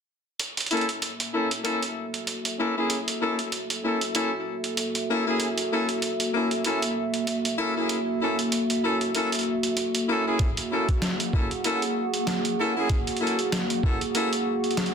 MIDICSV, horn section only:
0, 0, Header, 1, 2, 480
1, 0, Start_track
1, 0, Tempo, 625000
1, 305, Time_signature, 4, 2, 24, 8
1, 11475, End_track
2, 0, Start_track
2, 0, Title_t, "Horn section"
2, 0, Program_c, 0, 61
2, 544, Note_on_c, 0, 64, 68
2, 545, Note_on_c, 0, 58, 72
2, 545, Note_on_c, 0, 61, 68
2, 545, Note_on_c, 0, 69, 83
2, 663, Note_off_c, 0, 64, 0
2, 664, Note_off_c, 0, 58, 0
2, 664, Note_off_c, 0, 61, 0
2, 664, Note_off_c, 0, 69, 0
2, 1023, Note_on_c, 0, 58, 69
2, 1023, Note_on_c, 0, 61, 64
2, 1023, Note_on_c, 0, 64, 64
2, 1023, Note_on_c, 0, 69, 80
2, 1143, Note_off_c, 0, 58, 0
2, 1143, Note_off_c, 0, 61, 0
2, 1143, Note_off_c, 0, 64, 0
2, 1143, Note_off_c, 0, 69, 0
2, 1263, Note_on_c, 0, 58, 90
2, 1263, Note_on_c, 0, 61, 83
2, 1263, Note_on_c, 0, 64, 82
2, 1263, Note_on_c, 0, 69, 97
2, 1382, Note_off_c, 0, 64, 0
2, 1382, Note_off_c, 0, 69, 0
2, 1383, Note_off_c, 0, 58, 0
2, 1383, Note_off_c, 0, 61, 0
2, 1983, Note_on_c, 0, 58, 86
2, 1983, Note_on_c, 0, 61, 79
2, 1984, Note_on_c, 0, 64, 79
2, 1984, Note_on_c, 0, 69, 92
2, 2088, Note_off_c, 0, 58, 0
2, 2088, Note_off_c, 0, 61, 0
2, 2088, Note_off_c, 0, 64, 0
2, 2088, Note_off_c, 0, 69, 0
2, 2121, Note_on_c, 0, 58, 73
2, 2121, Note_on_c, 0, 61, 67
2, 2121, Note_on_c, 0, 64, 68
2, 2121, Note_on_c, 0, 68, 82
2, 2277, Note_off_c, 0, 58, 0
2, 2277, Note_off_c, 0, 64, 0
2, 2277, Note_off_c, 0, 68, 0
2, 2278, Note_off_c, 0, 61, 0
2, 2464, Note_on_c, 0, 61, 69
2, 2464, Note_on_c, 0, 64, 69
2, 2465, Note_on_c, 0, 58, 77
2, 2465, Note_on_c, 0, 69, 84
2, 2583, Note_off_c, 0, 58, 0
2, 2583, Note_off_c, 0, 61, 0
2, 2583, Note_off_c, 0, 64, 0
2, 2584, Note_off_c, 0, 69, 0
2, 2943, Note_on_c, 0, 58, 71
2, 2943, Note_on_c, 0, 61, 64
2, 2943, Note_on_c, 0, 64, 64
2, 2943, Note_on_c, 0, 69, 78
2, 3062, Note_off_c, 0, 58, 0
2, 3063, Note_off_c, 0, 61, 0
2, 3063, Note_off_c, 0, 64, 0
2, 3063, Note_off_c, 0, 69, 0
2, 3182, Note_on_c, 0, 61, 81
2, 3183, Note_on_c, 0, 58, 92
2, 3183, Note_on_c, 0, 64, 83
2, 3184, Note_on_c, 0, 69, 100
2, 3302, Note_off_c, 0, 61, 0
2, 3303, Note_off_c, 0, 58, 0
2, 3303, Note_off_c, 0, 64, 0
2, 3303, Note_off_c, 0, 69, 0
2, 3904, Note_on_c, 0, 58, 90
2, 3904, Note_on_c, 0, 61, 80
2, 3904, Note_on_c, 0, 64, 80
2, 3904, Note_on_c, 0, 69, 95
2, 4008, Note_off_c, 0, 61, 0
2, 4008, Note_off_c, 0, 64, 0
2, 4008, Note_off_c, 0, 69, 0
2, 4009, Note_off_c, 0, 58, 0
2, 4042, Note_on_c, 0, 58, 75
2, 4042, Note_on_c, 0, 61, 68
2, 4042, Note_on_c, 0, 64, 69
2, 4042, Note_on_c, 0, 68, 82
2, 4198, Note_off_c, 0, 58, 0
2, 4198, Note_off_c, 0, 61, 0
2, 4198, Note_off_c, 0, 64, 0
2, 4198, Note_off_c, 0, 68, 0
2, 4386, Note_on_c, 0, 61, 71
2, 4387, Note_on_c, 0, 58, 77
2, 4387, Note_on_c, 0, 64, 70
2, 4387, Note_on_c, 0, 69, 85
2, 4504, Note_off_c, 0, 61, 0
2, 4504, Note_off_c, 0, 64, 0
2, 4504, Note_off_c, 0, 69, 0
2, 4505, Note_off_c, 0, 58, 0
2, 4866, Note_on_c, 0, 58, 70
2, 4866, Note_on_c, 0, 61, 67
2, 4866, Note_on_c, 0, 64, 66
2, 4866, Note_on_c, 0, 69, 78
2, 4984, Note_off_c, 0, 58, 0
2, 4984, Note_off_c, 0, 61, 0
2, 4984, Note_off_c, 0, 64, 0
2, 4984, Note_off_c, 0, 69, 0
2, 5104, Note_on_c, 0, 64, 84
2, 5105, Note_on_c, 0, 61, 87
2, 5105, Note_on_c, 0, 69, 102
2, 5106, Note_on_c, 0, 58, 93
2, 5223, Note_off_c, 0, 64, 0
2, 5224, Note_off_c, 0, 58, 0
2, 5224, Note_off_c, 0, 61, 0
2, 5224, Note_off_c, 0, 69, 0
2, 5824, Note_on_c, 0, 64, 82
2, 5824, Note_on_c, 0, 69, 99
2, 5825, Note_on_c, 0, 58, 86
2, 5825, Note_on_c, 0, 61, 78
2, 5928, Note_off_c, 0, 69, 0
2, 5929, Note_off_c, 0, 58, 0
2, 5929, Note_off_c, 0, 61, 0
2, 5929, Note_off_c, 0, 64, 0
2, 5962, Note_on_c, 0, 58, 75
2, 5962, Note_on_c, 0, 61, 66
2, 5963, Note_on_c, 0, 64, 68
2, 5963, Note_on_c, 0, 68, 82
2, 6118, Note_off_c, 0, 58, 0
2, 6118, Note_off_c, 0, 61, 0
2, 6119, Note_off_c, 0, 64, 0
2, 6119, Note_off_c, 0, 68, 0
2, 6304, Note_on_c, 0, 61, 70
2, 6304, Note_on_c, 0, 64, 69
2, 6305, Note_on_c, 0, 58, 77
2, 6305, Note_on_c, 0, 69, 85
2, 6423, Note_off_c, 0, 61, 0
2, 6423, Note_off_c, 0, 64, 0
2, 6424, Note_off_c, 0, 58, 0
2, 6424, Note_off_c, 0, 69, 0
2, 6785, Note_on_c, 0, 58, 73
2, 6785, Note_on_c, 0, 61, 65
2, 6785, Note_on_c, 0, 64, 63
2, 6785, Note_on_c, 0, 69, 81
2, 6903, Note_off_c, 0, 58, 0
2, 6904, Note_off_c, 0, 61, 0
2, 6904, Note_off_c, 0, 64, 0
2, 6904, Note_off_c, 0, 69, 0
2, 7024, Note_on_c, 0, 69, 100
2, 7025, Note_on_c, 0, 58, 89
2, 7025, Note_on_c, 0, 61, 84
2, 7025, Note_on_c, 0, 64, 84
2, 7143, Note_off_c, 0, 61, 0
2, 7143, Note_off_c, 0, 69, 0
2, 7144, Note_off_c, 0, 58, 0
2, 7144, Note_off_c, 0, 64, 0
2, 7743, Note_on_c, 0, 58, 86
2, 7743, Note_on_c, 0, 61, 77
2, 7743, Note_on_c, 0, 64, 78
2, 7743, Note_on_c, 0, 69, 96
2, 7848, Note_off_c, 0, 58, 0
2, 7848, Note_off_c, 0, 61, 0
2, 7848, Note_off_c, 0, 64, 0
2, 7848, Note_off_c, 0, 69, 0
2, 7880, Note_on_c, 0, 64, 67
2, 7881, Note_on_c, 0, 58, 72
2, 7881, Note_on_c, 0, 61, 69
2, 7881, Note_on_c, 0, 68, 82
2, 8037, Note_off_c, 0, 58, 0
2, 8037, Note_off_c, 0, 61, 0
2, 8037, Note_off_c, 0, 64, 0
2, 8038, Note_off_c, 0, 68, 0
2, 8223, Note_on_c, 0, 61, 70
2, 8223, Note_on_c, 0, 64, 69
2, 8224, Note_on_c, 0, 69, 82
2, 8225, Note_on_c, 0, 58, 77
2, 8343, Note_off_c, 0, 58, 0
2, 8343, Note_off_c, 0, 61, 0
2, 8343, Note_off_c, 0, 64, 0
2, 8343, Note_off_c, 0, 69, 0
2, 8704, Note_on_c, 0, 61, 67
2, 8705, Note_on_c, 0, 58, 71
2, 8705, Note_on_c, 0, 64, 66
2, 8705, Note_on_c, 0, 69, 78
2, 8823, Note_off_c, 0, 58, 0
2, 8823, Note_off_c, 0, 61, 0
2, 8823, Note_off_c, 0, 69, 0
2, 8824, Note_off_c, 0, 64, 0
2, 8945, Note_on_c, 0, 58, 94
2, 8945, Note_on_c, 0, 61, 84
2, 8945, Note_on_c, 0, 64, 86
2, 8945, Note_on_c, 0, 69, 98
2, 9063, Note_off_c, 0, 58, 0
2, 9064, Note_off_c, 0, 61, 0
2, 9064, Note_off_c, 0, 64, 0
2, 9064, Note_off_c, 0, 69, 0
2, 9665, Note_on_c, 0, 58, 88
2, 9666, Note_on_c, 0, 61, 81
2, 9666, Note_on_c, 0, 64, 79
2, 9666, Note_on_c, 0, 69, 94
2, 9769, Note_off_c, 0, 58, 0
2, 9769, Note_off_c, 0, 61, 0
2, 9769, Note_off_c, 0, 64, 0
2, 9769, Note_off_c, 0, 69, 0
2, 9802, Note_on_c, 0, 68, 83
2, 9803, Note_on_c, 0, 58, 73
2, 9803, Note_on_c, 0, 61, 68
2, 9803, Note_on_c, 0, 64, 69
2, 9958, Note_off_c, 0, 61, 0
2, 9958, Note_off_c, 0, 68, 0
2, 9959, Note_off_c, 0, 58, 0
2, 9959, Note_off_c, 0, 64, 0
2, 10144, Note_on_c, 0, 58, 80
2, 10144, Note_on_c, 0, 61, 72
2, 10144, Note_on_c, 0, 64, 72
2, 10144, Note_on_c, 0, 69, 85
2, 10263, Note_off_c, 0, 58, 0
2, 10263, Note_off_c, 0, 61, 0
2, 10263, Note_off_c, 0, 64, 0
2, 10263, Note_off_c, 0, 69, 0
2, 10625, Note_on_c, 0, 58, 72
2, 10625, Note_on_c, 0, 69, 81
2, 10626, Note_on_c, 0, 61, 67
2, 10626, Note_on_c, 0, 64, 66
2, 10744, Note_off_c, 0, 58, 0
2, 10744, Note_off_c, 0, 61, 0
2, 10744, Note_off_c, 0, 64, 0
2, 10744, Note_off_c, 0, 69, 0
2, 10866, Note_on_c, 0, 58, 92
2, 10866, Note_on_c, 0, 61, 83
2, 10866, Note_on_c, 0, 69, 101
2, 10867, Note_on_c, 0, 64, 84
2, 10984, Note_off_c, 0, 58, 0
2, 10984, Note_off_c, 0, 61, 0
2, 10984, Note_off_c, 0, 64, 0
2, 10984, Note_off_c, 0, 69, 0
2, 11475, End_track
0, 0, End_of_file